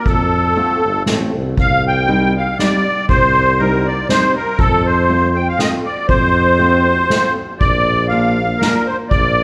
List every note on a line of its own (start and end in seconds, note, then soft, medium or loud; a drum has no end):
0.05 0.56 F2 medium
0.05 1.03 A4 medium
0.05 kick medium
0.05 ride soft
0.32 ride soft
0.55 0.81 A3 medium
0.55 0.81 C4 soft
0.55 0.81 F4 medium
0.55 ride soft
0.84 1.05 G1 medium
1.06 1.32 A1 medium
1.06 1.31 A3 medium
1.06 1.31 C4 soft
1.06 1.31 F4 medium
1.06 snare medium
1.06 ride soft
1.34 1.55 C2 medium
1.57 2.56 C2 medium
1.57 1.85 F5 loud
1.57 kick medium
1.57 ride soft
1.88 2.33 G5 medium
2.08 2.33 G3 medium
2.08 2.33 C4 soft
2.08 2.33 D#4 medium
2.08 ride soft
2.37 2.58 F5 medium
2.59 2.83 G3 medium
2.59 2.83 C4 soft
2.59 2.83 D#4 medium
2.59 3.06 D5 medium
2.59 snare soft
3.09 4.06 C2 medium
3.09 3.61 C5 loud
3.09 kick medium
3.09 ride soft
3.36 ride soft
3.59 3.84 G3 medium
3.59 3.84 C4 soft
3.59 3.84 D#4 medium
3.59 3.87 A#4 medium
3.59 ride soft
3.87 4.08 D5 medium
4.09 4.33 G3 medium
4.09 4.33 C4 soft
4.09 4.34 D#4 medium
4.09 4.34 C5 loud
4.09 snare medium
4.09 ride soft
4.36 4.60 A#4 medium
4.59 5.56 F2 medium
4.59 4.87 A4 loud
4.59 kick medium
4.59 ride soft
4.86 5.37 C5 medium
5.09 5.33 A3 medium
5.09 5.33 C4 medium
5.09 5.34 F4 medium
5.36 5.48 G5 medium
5.49 5.60 F5 medium
5.59 5.83 A3 soft
5.59 5.83 C4 soft
5.59 5.83 F4 medium
5.59 5.71 D#5 medium
5.59 snare medium
5.85 6.07 D5 medium
6.08 7.08 F2 loud
6.08 7.33 C5 loud
6.08 kick medium
6.08 ride soft
6.36 ride soft
6.58 6.83 A3 medium
6.58 6.84 C4 medium
6.58 6.83 F4 medium
6.58 ride soft
7.10 7.34 A3 medium
7.10 7.34 C4 medium
7.10 7.35 F4 medium
7.10 snare medium
7.10 ride soft
7.60 8.59 A#1 medium
7.60 8.07 D5 loud
7.60 kick medium
7.60 ride soft
8.08 8.36 A#3 medium
8.08 8.36 D4 medium
8.08 8.36 F4 medium
8.08 8.62 F5 medium
8.58 8.86 A#3 medium
8.58 8.86 D4 soft
8.58 8.88 A#4 medium
8.58 snare medium
8.62 8.86 F4 medium
8.86 8.97 C5 medium
9.09 9.43 A#1 medium
9.09 9.43 D5 loud
9.09 kick medium
9.09 ride soft
9.38 ride soft